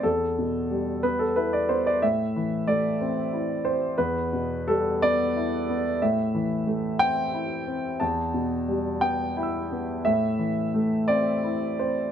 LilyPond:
<<
  \new Staff \with { instrumentName = "Grand piano" } { \time 6/8 \key a \minor \tempo 4. = 60 a'4. b'16 a'16 b'16 d''16 c''16 d''16 | e''4 d''4. c''8 | b'4 a'8 d''4. | e''4. g''4. |
a''4. g''8 <g'' b'' e'''>4 | e''4. d''4 c''8 | }
  \new Staff \with { instrumentName = "Grand piano" } { \time 6/8 \key a \minor e,8 b,8 g8 b8 e'8 b8 | a,8 e8 a8 c'8 e'8 c'8 | e,8 b,8 g8 b8 e'8 b8 | a,8 e8 a8 c'8 e'8 c'8 |
e,8 b,8 g8 b8 e'8 b8 | a,8 e8 a8 c'8 e'8 c'8 | }
>>